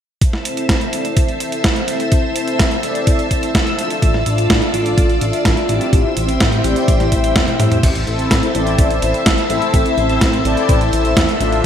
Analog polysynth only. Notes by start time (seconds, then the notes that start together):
0.45 C4 E4 A4 E5
0.93 C4 E4 A4 D5
1.40 C4 E4 A4 E5
1.88 C4 E4 A4 E5
2.36 C4 E4 A4 E5
2.83 C4 E4 A4 D5
3.31 C4 E4 A4 E5
3.79 D4 F4 A4 E5
4.26 D4 F4 A4 E5
4.74 D4 F4 A4 D5
5.21 D4 F4 A4 E5
5.69 C4 E4 G4 E5
6.17 C4 E4 G4 E5
6.64 C4 E4 G4 D5
7.12 C4 E4 G4 E5
7.60 C4 E4 G4 E5
8.07 C4 E4 A4 E5
8.55 C4 E4 A4 D5
9.02 C4 E4 A4 E5
9.50 C4 E4 A4 E5
9.98 C4 E4 A4 E5
10.45 C4 E4 A4 D5
10.93 C4 E4 A4 E5
11.40 D4 F4 A4 E5